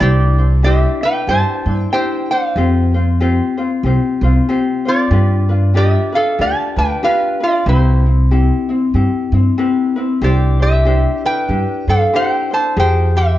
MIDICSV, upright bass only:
0, 0, Header, 1, 2, 480
1, 0, Start_track
1, 0, Key_signature, 0, "major"
1, 0, Tempo, 638298
1, 8, Time_signature, 4, 2, 24, 8
1, 10066, End_track
2, 0, Start_track
2, 0, Title_t, "Upright bass"
2, 0, Program_c, 0, 32
2, 5, Note_on_c, 0, 36, 98
2, 630, Note_off_c, 0, 36, 0
2, 957, Note_on_c, 0, 43, 82
2, 1053, Note_off_c, 0, 43, 0
2, 1245, Note_on_c, 0, 43, 80
2, 1374, Note_off_c, 0, 43, 0
2, 1923, Note_on_c, 0, 41, 91
2, 2548, Note_off_c, 0, 41, 0
2, 2882, Note_on_c, 0, 36, 84
2, 2976, Note_off_c, 0, 36, 0
2, 3167, Note_on_c, 0, 36, 92
2, 3295, Note_off_c, 0, 36, 0
2, 3840, Note_on_c, 0, 43, 96
2, 4466, Note_off_c, 0, 43, 0
2, 4805, Note_on_c, 0, 38, 86
2, 4898, Note_off_c, 0, 38, 0
2, 5089, Note_on_c, 0, 38, 81
2, 5216, Note_off_c, 0, 38, 0
2, 5761, Note_on_c, 0, 36, 96
2, 6386, Note_off_c, 0, 36, 0
2, 6721, Note_on_c, 0, 43, 78
2, 6816, Note_off_c, 0, 43, 0
2, 7008, Note_on_c, 0, 43, 83
2, 7135, Note_off_c, 0, 43, 0
2, 7681, Note_on_c, 0, 36, 91
2, 8306, Note_off_c, 0, 36, 0
2, 8639, Note_on_c, 0, 43, 82
2, 8733, Note_off_c, 0, 43, 0
2, 8929, Note_on_c, 0, 43, 77
2, 9056, Note_off_c, 0, 43, 0
2, 9601, Note_on_c, 0, 41, 97
2, 10066, Note_off_c, 0, 41, 0
2, 10066, End_track
0, 0, End_of_file